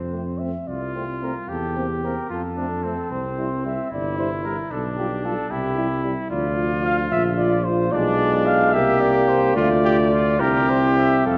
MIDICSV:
0, 0, Header, 1, 6, 480
1, 0, Start_track
1, 0, Tempo, 545455
1, 1316, Time_signature, 6, 3, 24, 8
1, 1791, Tempo, 535714
1, 7071, Tempo, 549451
1, 8991, Tempo, 574163
1, 10038, End_track
2, 0, Start_track
2, 0, Title_t, "Cornet"
2, 0, Program_c, 0, 56
2, 0, Note_on_c, 0, 72, 54
2, 336, Note_on_c, 0, 76, 63
2, 349, Note_off_c, 0, 72, 0
2, 590, Note_on_c, 0, 74, 52
2, 604, Note_off_c, 0, 76, 0
2, 828, Note_off_c, 0, 74, 0
2, 833, Note_on_c, 0, 72, 47
2, 942, Note_off_c, 0, 72, 0
2, 1085, Note_on_c, 0, 70, 51
2, 1191, Note_off_c, 0, 70, 0
2, 1321, Note_on_c, 0, 69, 58
2, 1552, Note_off_c, 0, 69, 0
2, 1566, Note_on_c, 0, 67, 55
2, 1793, Note_off_c, 0, 67, 0
2, 1802, Note_on_c, 0, 70, 58
2, 2045, Note_on_c, 0, 69, 61
2, 2058, Note_off_c, 0, 70, 0
2, 2754, Note_on_c, 0, 72, 65
2, 2767, Note_off_c, 0, 69, 0
2, 3238, Note_off_c, 0, 72, 0
2, 3243, Note_on_c, 0, 76, 68
2, 3477, Note_off_c, 0, 76, 0
2, 3486, Note_on_c, 0, 74, 68
2, 3711, Note_off_c, 0, 74, 0
2, 3716, Note_on_c, 0, 72, 63
2, 3825, Note_off_c, 0, 72, 0
2, 3946, Note_on_c, 0, 70, 64
2, 4056, Note_off_c, 0, 70, 0
2, 4195, Note_on_c, 0, 69, 72
2, 4302, Note_off_c, 0, 69, 0
2, 4425, Note_on_c, 0, 67, 68
2, 4670, Note_on_c, 0, 69, 75
2, 4684, Note_off_c, 0, 67, 0
2, 4896, Note_off_c, 0, 69, 0
2, 4901, Note_on_c, 0, 67, 76
2, 5367, Note_off_c, 0, 67, 0
2, 5613, Note_on_c, 0, 74, 83
2, 6067, Note_off_c, 0, 74, 0
2, 6103, Note_on_c, 0, 77, 99
2, 6212, Note_off_c, 0, 77, 0
2, 6341, Note_on_c, 0, 76, 95
2, 6451, Note_off_c, 0, 76, 0
2, 6577, Note_on_c, 0, 74, 89
2, 6817, Note_on_c, 0, 72, 90
2, 6831, Note_off_c, 0, 74, 0
2, 7057, Note_on_c, 0, 74, 103
2, 7070, Note_off_c, 0, 72, 0
2, 7537, Note_on_c, 0, 77, 113
2, 7550, Note_off_c, 0, 74, 0
2, 7767, Note_on_c, 0, 76, 102
2, 7780, Note_off_c, 0, 77, 0
2, 8012, Note_on_c, 0, 74, 92
2, 8025, Note_off_c, 0, 76, 0
2, 8256, Note_on_c, 0, 72, 95
2, 8269, Note_off_c, 0, 74, 0
2, 8487, Note_on_c, 0, 74, 114
2, 8500, Note_off_c, 0, 72, 0
2, 9216, Note_on_c, 0, 70, 99
2, 9229, Note_off_c, 0, 74, 0
2, 9466, Note_on_c, 0, 72, 84
2, 9479, Note_off_c, 0, 70, 0
2, 9697, Note_off_c, 0, 72, 0
2, 9702, Note_on_c, 0, 76, 91
2, 9945, Note_on_c, 0, 77, 99
2, 9957, Note_off_c, 0, 76, 0
2, 10038, Note_off_c, 0, 77, 0
2, 10038, End_track
3, 0, Start_track
3, 0, Title_t, "Trumpet"
3, 0, Program_c, 1, 56
3, 584, Note_on_c, 1, 65, 49
3, 1308, Note_on_c, 1, 67, 52
3, 1321, Note_off_c, 1, 65, 0
3, 2017, Note_off_c, 1, 67, 0
3, 2023, Note_on_c, 1, 65, 45
3, 2133, Note_off_c, 1, 65, 0
3, 2260, Note_on_c, 1, 62, 46
3, 2508, Note_on_c, 1, 60, 41
3, 2521, Note_off_c, 1, 62, 0
3, 3462, Note_off_c, 1, 60, 0
3, 3467, Note_on_c, 1, 64, 58
3, 4192, Note_on_c, 1, 62, 60
3, 4205, Note_off_c, 1, 64, 0
3, 4906, Note_on_c, 1, 64, 67
3, 4919, Note_off_c, 1, 62, 0
3, 5613, Note_off_c, 1, 64, 0
3, 5618, Note_on_c, 1, 65, 77
3, 6798, Note_off_c, 1, 65, 0
3, 7068, Note_on_c, 1, 62, 80
3, 7752, Note_off_c, 1, 62, 0
3, 7783, Note_on_c, 1, 67, 90
3, 8488, Note_off_c, 1, 67, 0
3, 8496, Note_on_c, 1, 65, 79
3, 8607, Note_off_c, 1, 65, 0
3, 8744, Note_on_c, 1, 67, 83
3, 8854, Note_off_c, 1, 67, 0
3, 8987, Note_on_c, 1, 65, 76
3, 9219, Note_on_c, 1, 67, 92
3, 9231, Note_off_c, 1, 65, 0
3, 9941, Note_off_c, 1, 67, 0
3, 9946, Note_on_c, 1, 69, 77
3, 10038, Note_off_c, 1, 69, 0
3, 10038, End_track
4, 0, Start_track
4, 0, Title_t, "French horn"
4, 0, Program_c, 2, 60
4, 115, Note_on_c, 2, 60, 36
4, 202, Note_off_c, 2, 60, 0
4, 356, Note_on_c, 2, 60, 36
4, 443, Note_off_c, 2, 60, 0
4, 839, Note_on_c, 2, 60, 36
4, 925, Note_off_c, 2, 60, 0
4, 1073, Note_on_c, 2, 60, 38
4, 1159, Note_off_c, 2, 60, 0
4, 1552, Note_on_c, 2, 60, 38
4, 1638, Note_off_c, 2, 60, 0
4, 1797, Note_on_c, 2, 60, 40
4, 1883, Note_off_c, 2, 60, 0
4, 2274, Note_on_c, 2, 60, 39
4, 2360, Note_off_c, 2, 60, 0
4, 2515, Note_on_c, 2, 60, 43
4, 2601, Note_off_c, 2, 60, 0
4, 3000, Note_on_c, 2, 64, 41
4, 3087, Note_off_c, 2, 64, 0
4, 3240, Note_on_c, 2, 64, 44
4, 3326, Note_off_c, 2, 64, 0
4, 3718, Note_on_c, 2, 64, 47
4, 3805, Note_off_c, 2, 64, 0
4, 3960, Note_on_c, 2, 64, 47
4, 4045, Note_off_c, 2, 64, 0
4, 4439, Note_on_c, 2, 65, 49
4, 4524, Note_off_c, 2, 65, 0
4, 4675, Note_on_c, 2, 65, 53
4, 4760, Note_off_c, 2, 65, 0
4, 5150, Note_on_c, 2, 64, 54
4, 5235, Note_off_c, 2, 64, 0
4, 5386, Note_on_c, 2, 64, 55
4, 5472, Note_off_c, 2, 64, 0
4, 5622, Note_on_c, 2, 65, 70
4, 7791, Note_on_c, 2, 67, 68
4, 7805, Note_off_c, 2, 65, 0
4, 8497, Note_off_c, 2, 67, 0
4, 8502, Note_on_c, 2, 65, 84
4, 9224, Note_on_c, 2, 64, 64
4, 9237, Note_off_c, 2, 65, 0
4, 9944, Note_off_c, 2, 64, 0
4, 9949, Note_on_c, 2, 69, 69
4, 10038, Note_off_c, 2, 69, 0
4, 10038, End_track
5, 0, Start_track
5, 0, Title_t, "Trombone"
5, 0, Program_c, 3, 57
5, 105, Note_on_c, 3, 57, 37
5, 195, Note_off_c, 3, 57, 0
5, 352, Note_on_c, 3, 57, 36
5, 440, Note_off_c, 3, 57, 0
5, 836, Note_on_c, 3, 57, 33
5, 922, Note_off_c, 3, 57, 0
5, 1074, Note_on_c, 3, 57, 38
5, 1161, Note_off_c, 3, 57, 0
5, 1552, Note_on_c, 3, 58, 39
5, 1638, Note_off_c, 3, 58, 0
5, 1790, Note_on_c, 3, 58, 38
5, 1878, Note_off_c, 3, 58, 0
5, 2273, Note_on_c, 3, 57, 38
5, 2360, Note_off_c, 3, 57, 0
5, 2514, Note_on_c, 3, 57, 45
5, 2600, Note_off_c, 3, 57, 0
5, 2996, Note_on_c, 3, 55, 41
5, 3083, Note_off_c, 3, 55, 0
5, 3235, Note_on_c, 3, 55, 42
5, 3323, Note_off_c, 3, 55, 0
5, 3715, Note_on_c, 3, 55, 44
5, 3802, Note_off_c, 3, 55, 0
5, 3956, Note_on_c, 3, 55, 47
5, 4043, Note_off_c, 3, 55, 0
5, 4432, Note_on_c, 3, 55, 49
5, 4518, Note_off_c, 3, 55, 0
5, 4684, Note_on_c, 3, 55, 49
5, 4767, Note_off_c, 3, 55, 0
5, 5147, Note_on_c, 3, 55, 52
5, 5233, Note_off_c, 3, 55, 0
5, 5381, Note_on_c, 3, 55, 60
5, 5468, Note_off_c, 3, 55, 0
5, 5632, Note_on_c, 3, 53, 68
5, 7067, Note_on_c, 3, 56, 74
5, 7080, Note_off_c, 3, 53, 0
5, 7785, Note_on_c, 3, 58, 80
5, 7798, Note_off_c, 3, 56, 0
5, 8504, Note_on_c, 3, 57, 76
5, 8517, Note_off_c, 3, 58, 0
5, 9210, Note_off_c, 3, 57, 0
5, 9215, Note_on_c, 3, 60, 71
5, 10038, Note_off_c, 3, 60, 0
5, 10038, End_track
6, 0, Start_track
6, 0, Title_t, "Tuba"
6, 0, Program_c, 4, 58
6, 0, Note_on_c, 4, 41, 48
6, 477, Note_off_c, 4, 41, 0
6, 598, Note_on_c, 4, 36, 44
6, 1196, Note_off_c, 4, 36, 0
6, 1313, Note_on_c, 4, 40, 52
6, 1911, Note_off_c, 4, 40, 0
6, 2032, Note_on_c, 4, 41, 45
6, 2633, Note_off_c, 4, 41, 0
6, 2755, Note_on_c, 4, 36, 56
6, 3359, Note_off_c, 4, 36, 0
6, 3479, Note_on_c, 4, 31, 57
6, 4077, Note_off_c, 4, 31, 0
6, 4194, Note_on_c, 4, 35, 61
6, 4790, Note_off_c, 4, 35, 0
6, 4910, Note_on_c, 4, 36, 68
6, 5505, Note_off_c, 4, 36, 0
6, 5623, Note_on_c, 4, 38, 67
6, 6311, Note_off_c, 4, 38, 0
6, 6344, Note_on_c, 4, 34, 71
6, 7055, Note_off_c, 4, 34, 0
6, 7069, Note_on_c, 4, 35, 76
6, 7786, Note_on_c, 4, 36, 75
6, 7799, Note_off_c, 4, 35, 0
6, 8502, Note_on_c, 4, 38, 83
6, 8515, Note_off_c, 4, 36, 0
6, 9222, Note_on_c, 4, 36, 79
6, 9234, Note_off_c, 4, 38, 0
6, 9943, Note_off_c, 4, 36, 0
6, 9948, Note_on_c, 4, 41, 68
6, 10038, Note_off_c, 4, 41, 0
6, 10038, End_track
0, 0, End_of_file